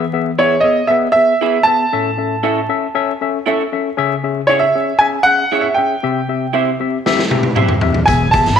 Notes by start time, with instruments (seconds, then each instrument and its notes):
Already playing: tine electric piano E3
0.13 tine electric piano B3 G#4 E5
0.39 tine electric piano B3 G#4 E5, clean electric guitar E4 G#4 B4 E5, grand piano C#5
0.61 tine electric piano B3 G#4 E5, grand piano D#5
0.87 tine electric piano B3 G#4 E5, grand piano E5
1.12 tine electric piano B3 G#4, grand piano E5
1.16 tine electric piano E5
1.41 tine electric piano B3 G#4 E5, clean electric guitar E4 G#4 B4 E5
1.63 tine electric piano B3 G#4, grand piano A5
1.67 tine electric piano E5
1.93 tine electric piano A2 C#4 A4 E5
2.18 tine electric piano C#4 A4 E5
2.43 tine electric piano C#4 A4 E5, clean electric guitar E4 A4 C#5 E5
2.69 tine electric piano C#4 A4 E5
2.95 tine electric piano C#4 A4 E5
3.21 tine electric piano C#4 A4 E5
3.46 tine electric piano C#4 A4 E5, clean electric guitar E4 A4 C#5 E5
3.72 tine electric piano C#4 A4 E5
3.97 tine electric piano C#3 C#4 G#4 E5
4.24 tine electric piano C#4 G#4 E5
4.47 tine electric piano C#4 G#4 E5, clean electric guitar E4 G#4 C#5 E5, grand piano C#5
4.59 grand piano E5
4.75 tine electric piano C#4 G#4 E5
4.99 tine electric piano C#4 G#4 E5, grand piano G#5
5.23 tine electric piano C#4 G#4 E5, grand piano F#5
5.52 tine electric piano C#4 G#4 E5, clean electric guitar E4 G#4 C#5 E5
5.61 grand piano E5
5.75 tine electric piano C#4 G#4 E5, grand piano G5
6.03 tine electric piano C3 C4 G4 E5
6.28 tine electric piano C4 G4 E5
6.53 tine electric piano C4 G4 E5, clean electric guitar E4 G4 C5 E5
6.80 tine electric piano C4 G4 E5
7.06 tine electric piano C4 G4 E5, snare
7.19 snare
7.30 tine electric piano C4 G4 E5, high tom
7.43 high tom
7.56 tine electric piano C4 G4 E5, clean electric guitar E4 G4 C5 E5, mid tom
7.69 mid tom
7.81 tine electric piano C4 G4 E5, floor tom
7.94 floor tom
8.06 upright bass E1, tine electric piano E3 B3 G#4 E5, grand piano G#5, kick, closed hi-hat, tambourine
8.31 tine electric piano B3 G#4 E5, grand piano A5, kick, closed hi-hat
8.46 upright bass G#1, snare, closed hi-hat
8.56 grand piano B5